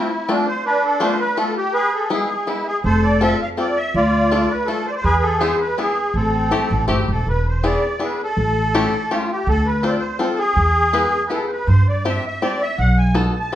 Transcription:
Already playing: A3 C4 D4 E4 F4
0.29 A3 C4 D4 F4
0.48 C5
0.65 D4 B4
0.85 A4
1.00 A3 B3 D4 F4 C5
1.20 B4
1.36 A3 B3 D4 F4 A4
1.57 G4
1.74 G#4 B4
1.95 A4
2.10 G#3 B3 E4 G#4
2.47 G#3 B3 E4 G#4
2.67 G#4
2.84 F1 A4 C5
3.03 D5
3.21 C4 D4 F4 A4 E5
3.42 F5
3.57 C4 D4 F4 A4 D5
3.77 E5
3.94 D2 F4 D5
4.31 A3 D4 F4 A4
4.50 B4
4.66 A3 D4 F4 A4
4.86 C5
4.91 D5
4.95 C5
5.04 E2 G#4 B4
5.22 A4
5.40 B3 D4 E4 G#4 C5
5.60 B4
5.77 B3 D4 E4 G#4
6.14 A1 C4 A4
6.51 A3 C4 E4 G4
6.70 A1
6.88 G1 A3 C4 E4 G4
6.93 G4
7.08 E1 A4
7.27 E1 B4
7.47 C5
7.64 B3 D4 E4 G#4 D5
7.99 B3 D4 E4 G#4 B4
8.23 A4
8.37 A1
8.75 A3 C#4 E4 G4
9.11 A3 C#4 E4 F4 G4
9.32 G4
9.47 D2 A4
9.66 B4
9.83 C4 D4 F4 A4 C5
9.88 D5
9.98 C5
10.19 C4 D4 F4 A4
10.39 G#4
10.56 E2
10.93 B3 E4 G#4 B4
11.27 B3 E4 G#4 B4
11.31 A4 B4
11.47 C5
11.52 B4
11.67 G2 C5
11.88 D5
12.05 C4 D4 G4 C5 E5
12.27 E5
12.42 C4 D4 G4 C5 D5
12.62 E5
12.78 B1 F#5
12.98 G#5
13.14 B3 D#4 F#4 A4 A5
13.28 A5
13.40 A5

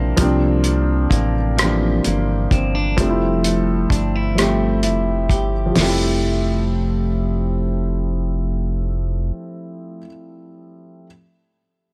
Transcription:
Already playing: A#1 C3 F3 G3 A#3 C4 D4 E5
0.17 C2 C3 F3 G3 A#3, kick, closed hi-hat
0.21 C4 D4
0.63 F3, closed hi-hat
1.10 A1 A#3, kick, closed hi-hat
1.57 E3 F3 G3 A#3, cross-stick, closed hi-hat
1.61 F3 C4 D4
2.04 G1 A#3, closed hi-hat
2.51 G1 C4, kick, closed hi-hat
2.75 D4
2.97 F1 F3 G3 A3, kick, closed hi-hat
3.01 C4 D4
3.09 E4
3.44 A3, closed hi-hat
3.90 G1 D4, kick, closed hi-hat
4.16 E4
4.35 F3 G3 A3, cross-stick, closed hi-hat
4.40 C4 G4
4.83 F1 E4, closed hi-hat
5.30 G1 G4, kick, closed hi-hat
5.66 F3
5.71 G3
5.76 F1 F3 A3, snare, floor tom, open hi-hat
5.81 C4 E4 G4
5.88 E4

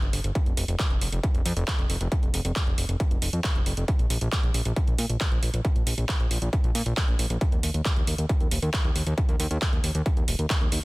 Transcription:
0.02 G1, closed hi-hat
0.13 G1, open hi-hat
0.24 G1, closed hi-hat
0.35 kick, closed hi-hat
0.46 F1, closed hi-hat
0.57 F1, open hi-hat
0.68 F1, closed hi-hat
0.79 kick, clap, closed hi-hat
0.90 F1, closed hi-hat
1.01 F1, open hi-hat
1.12 F1, closed hi-hat
1.23 kick, closed hi-hat
1.34 F1, closed hi-hat
1.46 F2, open hi-hat
1.57 F1, closed hi-hat
1.68 kick, clap, closed hi-hat
1.79 F1, closed hi-hat
1.90 F1, open hi-hat
2.01 F1, closed hi-hat
2.12 kick, closed hi-hat
2.23 F1, closed hi-hat
2.34 F1, open hi-hat
2.45 F1, closed hi-hat
2.56 kick, clap, closed hi-hat
2.67 F1, closed hi-hat
2.78 F1, open hi-hat
2.89 F1, closed hi-hat
3.00 kick, closed hi-hat
3.11 F1, closed hi-hat
3.22 F1, open hi-hat
3.33 F2, closed hi-hat
3.44 kick, clap, closed hi-hat
3.55 F1, closed hi-hat
3.66 F1, open hi-hat
3.77 F1, closed hi-hat
3.88 kick, closed hi-hat
3.99 A#1, closed hi-hat
4.10 A#1, open hi-hat
4.21 A#1, closed hi-hat
4.32 kick, clap, closed hi-hat
4.43 A#1, closed hi-hat
4.54 A#1, open hi-hat
4.65 A#1, closed hi-hat
4.76 kick, closed hi-hat
4.87 A#1, closed hi-hat
4.98 A#2, open hi-hat
5.10 A#1, closed hi-hat
5.21 kick, clap, closed hi-hat
5.32 A#1, closed hi-hat
5.43 A#1, open hi-hat
5.54 A#1, closed hi-hat
5.65 kick, closed hi-hat
5.76 A#1, closed hi-hat
5.87 A#1, open hi-hat
5.98 A#1, closed hi-hat
6.09 kick, clap, closed hi-hat
6.20 A#1, closed hi-hat
6.31 A#1, open hi-hat
6.42 A#1, closed hi-hat
6.53 kick, closed hi-hat
6.64 A#1, closed hi-hat
6.75 A#2, open hi-hat
6.86 A#1, closed hi-hat
6.97 kick, clap, closed hi-hat
7.08 A#1, closed hi-hat
7.19 A#1, open hi-hat
7.30 A#1, closed hi-hat
7.41 kick, closed hi-hat
7.52 D#2, closed hi-hat
7.63 D#2, open hi-hat
7.74 D#2, closed hi-hat
7.85 kick, clap, closed hi-hat
7.96 D#2, closed hi-hat
8.07 D#2, open hi-hat
8.18 D#2, closed hi-hat
8.29 kick, closed hi-hat
8.40 D#2, closed hi-hat
8.51 D#1, open hi-hat
8.62 D#2, closed hi-hat
8.74 kick, clap, closed hi-hat
8.85 D#2, closed hi-hat
8.96 D#2, open hi-hat
9.07 D#2, closed hi-hat
9.18 kick, closed hi-hat
9.29 D#2, closed hi-hat
9.40 D#2, open hi-hat
9.51 D#2, closed hi-hat
9.62 kick, clap, closed hi-hat
9.73 D#2, closed hi-hat
9.84 D#2, open hi-hat
9.95 D#2, closed hi-hat
10.06 kick, closed hi-hat
10.17 D#2, closed hi-hat
10.28 D#1, open hi-hat
10.39 D#2, closed hi-hat
10.50 kick, clap, closed hi-hat
10.61 D#2, closed hi-hat
10.72 D#2, open hi-hat

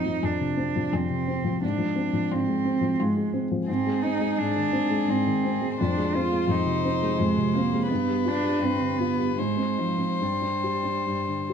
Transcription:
Already playing: F2 F3 C4 D#4
0.06 F3
0.23 F2 D4 G#4
0.40 C3
0.57 C4
0.76 F3
0.93 F2 C4 G#4
1.10 C3
1.27 C4
1.44 F3
1.62 G#2 D4
1.78 F3
1.95 C4
2.13 F3
2.31 G#2 C4 F4
2.48 G#3
2.64 C4
2.81 F3
2.99 G#2 G#3 F4
3.17 G#3
3.33 C4
3.51 F3
3.68 G#2 C4 G#4
3.87 G#3
4.02 C4 D#4
4.20 G#3
4.38 G#2 D4
4.56 D#3
4.72 C4
4.90 G#3
5.08 G#2 C4
5.26 D#3
5.44 C4
5.61 G#3
5.78 F2 D4 C5
5.98 G#3
6.15 C4 F4
6.32 G#3
6.48 F2 D#4
6.66 C3
6.85 C4
7.02 G#3
7.18 F2 G#3
7.38 C3
7.53 A#3 C4
7.73 G#3
7.88 G2 B3 B4
8.08 G3
8.25 D4 F4
8.42 G3
8.59 G2 C4
8.79 D3
8.98 B3 F4
9.18 G3
9.38 G#2 G#3 C5
9.57 C4
9.78 F3 D#4
9.98 C4
10.21 G2 G3
10.41 D4
10.64 G4
10.83 D4
11.07 G2
11.28 D3
11.50 G4

